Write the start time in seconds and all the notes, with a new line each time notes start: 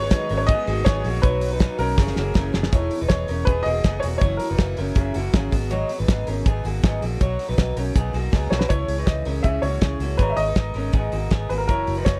Already playing: F#3 G#3 B3 D#4 F#4 G#4 B4 C#5
0.02 D#4 B4
0.11 G#2 D#3 F#3 B3 D#4 G#4, kick, snare, closed hi-hat
0.29 G#1 F#3 B3 C#4 D#4 G#4 A#4, open hi-hat
0.37 C#5
0.47 F#3 B3 G#4 D#5, kick, closed hi-hat
0.51 D#4 G#4
0.67 G#1 F#3 A#3 B3 D#4 F#4 G#4, open hi-hat
0.85 G#1 G#2 D#3 F#3 B3 D#4 G#4 C#5, kick, snare, closed hi-hat
1.03 A#1 F#3 A#3 B3 D#4 F#4 G#4, open hi-hat
1.22 B1 B2 F#3 A#3 B3 D#4 F#4 B4 C#5, kick, closed hi-hat
1.40 A#3 D#4 F#4, open hi-hat
1.52 D#4 B4
1.59 B2 F#3 A#3 D#4 F#4, kick, snare, closed hi-hat
1.78 B1 A#3 C#4 D#4 F#4 A#4, open hi-hat
1.97 F#1 E3 F#3 A#3 C#4 E4 G#4 A#4, kick, snare
2.07 snare
2.15 F#1 E3 A#3 C#4 F#4 G#4, snare
2.34 F#1 F#2 C#3 E3 A#3 C#4 G#4 A#4, kick, snare
2.52 F#1 E3 A#3 B3 C#4 G#4, snare
2.63 snare
2.72 E1 E3 B3 D#4 E4 G#4 C#5, kick, closed hi-hat
2.91 B3 D#4 G#4, open hi-hat
3.01 E1 D#4 B4
3.08 E1 E3 B3 D#4 G#4 C#5, kick, snare, closed hi-hat
3.27 E1 B3 C#4 D#4 G#4 A#4, open hi-hat
3.45 E1 E3 B3 D#4 G#4 B4, kick, closed hi-hat
3.63 E1 D#4 F#4 G#4 D#5, open hi-hat
3.67 A#3 B3
3.84 F#1 E3 B3 D#4 G#4, kick, snare, closed hi-hat
4.00 E1 F#4 G#4 C#5, open hi-hat
4.05 A#3 B3 D#4
4.18 F#1 C#5, kick, closed hi-hat
4.22 F#2 C#3 E3 A#3 E4 F#4 C#5
4.37 F#4 A#4, open hi-hat
4.42 E3 A#3 E4
4.50 F#1 D#4 B4
4.58 F#1 F#2 C#3 E3 A#3 E4 F#4, kick, snare, closed hi-hat
4.77 F#1 E3 A#3 C#4 E4 F#4 A#4, open hi-hat
4.95 F#1 E3 A#3 C#4 E4 F#4 G#4, kick, closed hi-hat
5.14 F#1 E3 A#3 E4 F#4, open hi-hat
5.33 G#1 F#2 C#3 E3 A#3 C#4 E4 F#4 G#4, kick, snare, closed hi-hat
5.51 G#1 F#3 B3 D#4 F#4 G#4, kick, open hi-hat
5.69 G#2 D#3 F#3 B3 D#4 F#4 G#4 C#5, closed hi-hat
5.89 F#3 B3 D#4 G#4, open hi-hat
5.99 G#1 D#4 B4
6.08 G#2 D#3 F#3 B3 D#4 G#4, kick, snare, closed hi-hat
6.27 G#1 F#3 B3 C#4 D#4 G#4 A#4, open hi-hat
6.45 G#1 F#3 B3 D#4 G#4, kick, closed hi-hat
6.64 G#1 F#3 A#3 B3 D#4 F#4 G#4, open hi-hat
6.83 G#1 G#2 D#3 F#3 B3 D#4 G#4, kick, snare, closed hi-hat
7.01 A#1 F#3 A#3 B3 D#4 F#4 G#4, open hi-hat
7.21 B1 B2 F#3 A#3 D#4 F#4 C#5, kick, closed hi-hat
7.39 A#3 D#4 F#4, open hi-hat
7.49 B1 D#4 B4
7.58 B1 B2 F#3 A#3 D#4 F#4, kick, snare, closed hi-hat
7.77 B1 A#3 C#4 D#4 F#4 A#4, open hi-hat
7.94 B1 F#3 A#3 B3 D#4 F#4 G#4, kick, closed hi-hat
8.13 B1 A#3 D#4 F#4, open hi-hat
8.32 C#2 B2 F#3 A#3 B3 D#4 F#4 G#4, kick, snare
8.50 B1 A#3 D#4 F#4 C#5, snare
8.59 B4, snare
8.68 C#2 C#3 E3 C#4 E4 G#4 C#5, kick, closed hi-hat
8.88 C#2 C#4 E4 G#4, open hi-hat
8.99 D#4 B4
9.06 C#2 E3 C#4 E4 G#4 D#5, kick, snare, closed hi-hat
9.25 C#2 C#4 E4 G#4 A#4, open hi-hat
9.43 C#2 C#3 E3 C#4 E4 G#4 E5, kick, closed hi-hat
9.62 C#2 A#3 C#4 E4 F#4 G#4 C#5, open hi-hat
9.81 C#2 E3 C#4 E4 G#4, kick, snare, closed hi-hat
9.99 C#2 A#3 C#4 E4 F#4 G#4, open hi-hat
10.17 G#1 G#2 D#3 G#3 B3 D#4 G#4 A#4 B4 C#5, kick, closed hi-hat
10.30 E5
10.37 G#1 G#3 B3 D#4 A#4 D#5, open hi-hat
10.47 D#4 B4
10.55 G#1 G#3 B3 D#4 A#4, kick, snare, closed hi-hat
10.74 G#1 G#3 B3 C#4 D#4 A#4, open hi-hat
10.92 G#1 G#2 D#3 G#3 B3 D#4 G#4 A#4, kick, closed hi-hat
11.12 G#1 G#3 A#3 B3 D#4 F#4 A#4, open hi-hat
11.31 G#1 G#3 B3 D#4 G#4 A#4, kick, snare, closed hi-hat
11.49 G#1 G#3 A#3 B3 D#4 F#4 A#4 B4, open hi-hat
11.58 A#4
11.67 F#1 F#2 C#3 E3 A#3 E4 F#4 A#4 C#5, kick, closed hi-hat
11.86 F#1 E3 A#3 E4 F#4, open hi-hat
11.97 D#4 B4
12.04 F#1 E3 A#3 F#4 C#5, kick, snare, closed hi-hat